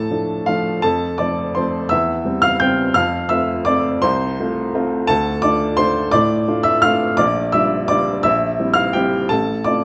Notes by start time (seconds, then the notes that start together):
Already playing: A2 A4 A5
0.10 F3 A3 D4
0.46 F3 A3 D4 F4 F5
0.82 F2 A4 A5
1.18 F3 A3 C4 D5 D6
1.55 F3 A3 C4 C5 C6
1.89 E2 E5 E6
2.25 G3 C4
2.42 F5 F6
2.60 G3 C4 G5 G6
2.94 F2 F5 F6
3.29 A3 C4 F4 E5 E6
3.65 A3 C4 F4 D5 D6
4.02 C2 C5 C6
4.40 A3 C4 F4
4.74 A3 C4 F4
5.07 D2 A4 A5
5.42 A3 D4 F4 D5 D6
5.77 A3 D4 F4 C5 C6
6.11 A2 D5 D6
6.48 A3 D4 F4
6.63 E5 E6
6.82 A3 D4 F4 F5 F6
7.17 A#1 D5 D6
7.52 G3 D4 F4 E5 E6
7.88 G3 D4 F4 D5 D6
8.23 A#1 E5 E6
8.59 G3 C4 E4
8.74 F5 F6
8.93 G3 C4 E4 G4 G5
9.29 A1 A4 A5
9.64 A3 C4 F4 D5 D6